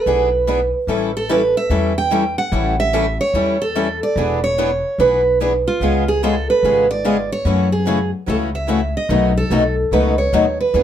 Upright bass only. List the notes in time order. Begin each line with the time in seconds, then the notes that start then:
0.06 B1
0.87 A1
1.70 E2
2.52 A1
3.33 E2
4.16 E1
4.98 B1
5.80 C#2
6.63 G#1
7.45 F#2
8.28 C#2
9.09 B1
9.50 B1
9.91 C#2
10.32 D#2
10.74 E2